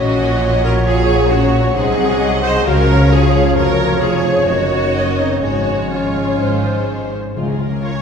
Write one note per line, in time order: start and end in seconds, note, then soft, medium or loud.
0.00 1.73 A#1 medium
0.00 0.86 A#2 medium
0.00 1.72 A#2 medium
0.00 2.68 F#3 medium
0.00 0.18 C#4 medium
0.00 0.61 C#4 medium
0.00 0.60 F#4 medium
0.00 0.30 C#5 medium
0.00 1.49 C#5 medium
0.00 1.72 C#5 medium
0.00 0.84 D#5 medium
0.00 1.68 C#6 soft
0.09 0.97 A#3 soft
0.20 0.74 C#4 soft
0.31 0.51 C#5 medium
0.42 1.31 F#5 medium
0.52 1.19 C#5 medium
0.63 0.86 F#4 medium
0.63 1.53 F#4 medium
0.63 0.72 A#4 loud
0.76 1.08 C#4 medium
0.86 1.78 A#2 medium
0.86 1.31 F4 medium
0.86 1.30 G#4 loud
0.86 1.74 C#5 medium
0.98 1.78 A#3 medium
1.09 1.64 C#4 medium
1.21 1.42 C#5 soft
1.31 1.76 C#4 medium
1.31 1.76 F#4 medium
1.43 1.78 C#5 medium
1.65 1.78 C#4 soft
1.75 2.65 C2 medium
1.75 2.65 C3 medium
1.75 2.69 C3 medium
1.75 2.42 D#4 medium
1.75 2.42 G#4 loud
1.75 2.21 C5 medium
1.75 2.64 D#5 medium
1.75 2.63 F#5 medium
1.87 2.68 F#3 soft
1.98 2.54 G#3 medium
2.09 2.43 D#5 medium
2.21 2.66 D#5 medium
2.21 2.68 F#5 medium
2.32 3.22 G#4 medium
2.44 2.67 G#4 medium
2.44 2.66 C5 medium
2.44 2.69 D#5 medium
2.55 2.88 G#3 medium
2.66 3.56 C#2 medium
2.66 3.59 C#3 medium
2.66 3.56 C#3 medium
2.66 4.50 F3 medium
2.66 3.12 F#4 medium
2.66 3.11 A#4 loud
2.66 6.40 C#5 medium
2.66 3.57 C#5 medium
2.66 3.54 F5 medium
2.78 4.24 C#4 soft
2.89 3.45 G#3 medium
3.01 3.34 C#5 soft
3.11 3.56 F4 medium
3.11 3.58 G#4 medium
3.11 4.50 F5 medium
3.23 4.01 G#4 medium
3.35 3.90 C#5 medium
3.47 3.79 G#3 soft
3.57 4.44 F1 medium
3.57 4.44 F2 medium
3.57 4.50 F2 medium
3.57 4.01 F#4 medium
3.57 4.02 A#4 loud
3.57 3.99 C#5 medium
3.57 4.93 C#5 medium
3.69 4.50 F3 medium
3.80 4.36 G#3 soft
3.91 4.13 C#5 medium
4.02 4.48 F4 medium
4.02 4.48 G#4 medium
4.02 4.47 C#5 medium
4.14 4.82 C#5 soft
4.25 6.15 C#4 medium
4.37 4.50 G#3 soft
4.48 5.43 F#1 medium
4.48 5.43 F#2 medium
4.48 5.45 F#2 medium
4.48 5.42 D#3 medium
4.48 5.20 D#4 medium
4.48 5.19 F#4 medium
4.48 5.41 C#5 medium
4.60 5.45 C#3 soft
4.72 5.29 A#3 soft
4.83 5.17 C#5 soft
4.96 5.45 D#5 medium
4.96 5.43 D#5 medium
5.07 5.45 A#4 soft
5.18 5.42 C4 medium
5.18 5.43 D#4 medium
5.18 5.79 C#5 soft
5.31 5.45 A#3 soft
5.42 6.39 G#1 medium
5.42 6.39 G#2 soft
5.42 6.38 G#2 medium
5.42 7.10 G#3 medium
5.42 5.91 D#4 medium
5.42 5.91 F#4 medium
5.42 5.91 C#5 soft
5.42 7.10 C#5 medium
5.55 6.42 F3 soft
5.67 6.27 G#3 soft
5.80 6.02 C#5 soft
5.91 7.10 C#4 medium
5.91 7.13 F4 medium
5.91 6.99 G#4 soft
5.91 6.40 C#5 medium
6.03 6.42 C#5 soft
6.16 6.42 C#4 soft
6.28 6.63 G#3 soft
6.39 7.15 G#1 soft
6.39 7.14 G#2 medium
6.39 7.39 G#2 medium
6.39 7.11 C5 soft
6.39 7.17 C5 medium
6.52 7.39 D#3 soft
6.64 7.24 G#3 soft
6.76 7.11 C5 soft
6.88 7.39 D#5 soft
7.00 8.02 G#4 soft
7.12 7.38 C5 soft
7.25 7.58 G#3 soft
7.36 8.02 C#2 soft
7.36 8.02 C#3 soft
7.36 8.02 C#3 medium
7.36 7.53 F3 soft
7.36 7.53 G#3 soft
7.36 7.53 C#4 soft
7.36 7.48 F4 soft
7.36 7.53 G#4 soft
7.36 8.02 A#4 medium
7.48 7.60 C#4 soft
7.48 7.60 G#4 soft
7.59 8.02 G#3 soft
7.59 7.71 F4 soft
7.71 7.82 C#4 soft
7.71 7.82 G#4 soft
7.82 7.93 F4 soft
7.82 8.02 F4 soft
7.82 8.02 C#5 soft
7.82 8.02 C#5 medium
7.93 8.02 C#4 soft
7.93 8.02 G#4 soft